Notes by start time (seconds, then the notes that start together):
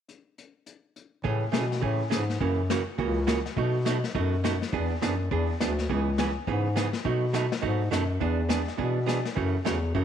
0.09 closed hi-hat
0.38 closed hi-hat
0.66 closed hi-hat
0.96 closed hi-hat
1.24 A2 C#3 E3 A3 C#4 G#4, brush sweep, kick
1.52 B2 C#3 E3 A3 C#4 G#4, snare, hi-hat pedal
1.72 snare
1.81 A2 C#3 E3 A3 C#4 G#4, brush sweep, kick
2.10 G#2 C#3 E3 A3 C#4 G#4, snare, hi-hat pedal
2.30 snare
2.40 F#2 C#3 E3 A#3 C#4 F#4, brush sweep, kick
2.70 C#3 E3 A#3 C#4 F#4, snare, hi-hat pedal
2.98 C#2 C#3 E3 A#3 C#4 F#4, brush sweep, kick
3.27 C#3 E3 A#3 C#4 F#4, snare, hi-hat pedal
3.46 snare
3.56 B2 F#3 A3 D#4 F#4, brush sweep, kick
3.85 B2 F#3 A3 D#4 F#4, snare, hi-hat pedal
4.04 snare
4.14 F#2 B2 F#3 A3 D#4 F#4, brush sweep, kick
4.44 B2 F#3 A3 D#4 F#4, snare, hi-hat pedal
4.62 snare
4.72 E2 E3 B3 D4 G#4, brush sweep, kick
5.02 F#2 E3 B3 D4 G#4, snare, hi-hat pedal
5.31 E2 E3 B3 D4 G#4, brush sweep, kick
5.60 D2 E3 B3 D4 G#4, snare, hi-hat pedal
5.79 snare
5.89 C#2 C#3 E3 B3 C#4 G#4, brush sweep, kick
6.18 C#3 E3 B3 C#4 G#4, snare, hi-hat pedal
6.47 G#2 C#3 E3 B3 C#4 G#4, brush sweep, kick
6.76 C#3 E3 B3 C#4 G#4, snare, hi-hat pedal
6.93 snare
7.05 B2 F#3 A3 D#4 F#4, brush sweep, kick
7.33 B2 F#3 A3 D#4 F#4, snare, hi-hat pedal
7.52 snare
7.62 G#2 B2 F#3 A3 D#4 F#4, brush sweep, kick
7.91 F#2 B2 F#3 A3 D#4 F#4, snare, hi-hat pedal
8.20 E2 E3 B3 D4 G#4, brush sweep, kick
8.49 E3 B3 D4 G#4, snare, hi-hat pedal
8.68 snare
8.78 B2 E3 B3 D4 G#4, brush sweep, kick
9.06 E3 B3 D4 G#4, snare, hi-hat pedal
9.25 snare
9.36 F#2 C#3 E3 A3 C#4 F#4, brush sweep, kick
9.65 E2 C#3 E3 A3 C#4 F#4, snare, hi-hat pedal
9.95 F#2 C#3 E3 A3 C#4 F#4, brush sweep, kick